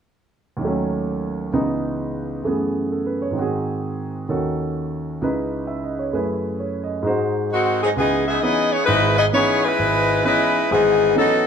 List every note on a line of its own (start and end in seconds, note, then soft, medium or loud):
0.57 1.50 D#2 soft
0.57 1.52 D#3 soft
0.61 1.53 F#3 soft
0.61 1.54 A3 soft
0.67 1.56 C#4 medium
1.53 2.45 C#2 medium
1.53 2.42 C#3 soft
1.53 2.42 E3 soft
1.53 2.45 B3 soft
1.53 2.45 D#4 medium
2.42 3.35 F#2 soft
2.42 3.36 C#3 soft
2.42 3.36 E3 soft
2.42 3.37 A3 soft
2.47 3.37 B3 soft
2.47 3.38 G#4 soft
2.92 3.20 A4 soft
3.06 3.30 B4 soft
3.22 3.45 C#5 soft
3.31 4.25 G#2 soft
3.31 4.27 D#3 soft
3.36 4.28 C4 soft
3.36 4.28 F#4 soft
3.41 4.31 G#4 soft
4.29 5.20 D#2 soft
4.29 5.20 D#3 soft
4.29 5.21 C#4 soft
4.29 5.21 F#4 soft
4.29 5.21 A4 medium
5.21 6.13 C#2 soft
5.21 6.11 C#3 soft
5.21 6.13 D#4 soft
5.21 6.13 E4 soft
5.21 6.13 B4 medium
5.67 5.96 E5 soft
5.83 6.06 D#5 soft
5.99 6.22 C#5 soft
6.13 7.04 F#2 soft
6.13 7.04 C#3 soft
6.13 7.05 A3 soft
6.13 7.05 E4 soft
6.13 7.05 G#4 soft
6.13 7.05 B4 soft
6.60 6.95 C#5 soft
6.84 7.14 D#5 soft
7.03 7.95 G#2 medium
7.03 7.96 G#3 soft
7.03 7.96 D#4 soft
7.03 7.97 F#4 soft
7.07 7.97 C5 medium
7.51 7.80 D#3 medium
7.51 7.79 G#3 medium
7.51 7.79 C4 medium
7.51 7.79 F#4 medium
7.51 7.80 D#5 soft
7.66 7.89 F#5 soft
7.82 7.89 F#3 medium
7.82 7.90 C4 medium
7.82 7.90 D#4 medium
7.82 7.89 G#4 medium
7.82 8.05 G#5 soft
7.96 8.36 C#2 medium
7.96 8.26 E3 medium
7.96 8.25 B3 medium
7.96 8.25 D#4 medium
7.96 8.26 G#4 medium
8.28 8.41 B3 medium
8.28 8.42 D#4 medium
8.28 8.41 G#4 medium
8.28 8.41 E5 medium
8.42 8.75 E3 soft
8.42 8.71 B3 medium
8.42 8.75 B3 soft
8.42 8.75 C#4 soft
8.42 8.75 D#4 soft
8.42 8.70 E4 medium
8.42 8.70 G#4 medium
8.42 8.73 D#5 medium
8.71 8.87 B3 medium
8.71 8.84 E4 medium
8.71 8.87 G#4 medium
8.71 8.87 C#5 medium
8.85 9.28 G#1 medium
8.85 9.27 G#2 medium
8.85 9.15 G#3 medium
8.85 9.15 D#4 medium
8.85 9.15 E4 medium
8.85 9.15 B4 medium
9.17 9.25 B3 medium
9.17 9.24 E4 medium
9.17 9.24 G#4 medium
9.17 9.25 D#5 medium
9.33 9.66 E3 medium
9.33 9.66 B3 soft
9.33 9.62 B3 medium
9.33 9.66 C#4 soft
9.33 9.66 D#4 medium
9.33 9.62 E4 medium
9.33 9.62 G#4 medium
9.33 9.62 C#5 medium
9.64 10.25 G#3 medium
9.64 10.25 D#4 medium
9.64 10.24 E4 medium
9.64 10.25 B4 loud
9.79 10.19 G#1 medium
10.23 10.57 E3 soft
10.23 10.68 G#3 medium
10.23 10.57 B3 soft
10.23 10.57 C#4 soft
10.23 10.57 D#4 soft
10.23 10.69 D#4 medium
10.23 10.68 E4 medium
10.23 10.68 B4 medium
10.71 11.11 G#1 medium
10.71 11.11 G#2 medium
10.71 11.18 E3 medium
10.71 11.17 B3 medium
10.71 11.16 D#4 medium
10.71 11.18 G#4 loud
11.16 11.47 E3 soft
11.16 11.46 F#3 medium
11.16 11.47 B3 soft
11.16 11.46 B3 medium
11.16 11.47 C#4 soft
11.16 11.47 D#4 medium
11.16 11.46 D#4 medium
11.16 11.46 A4 medium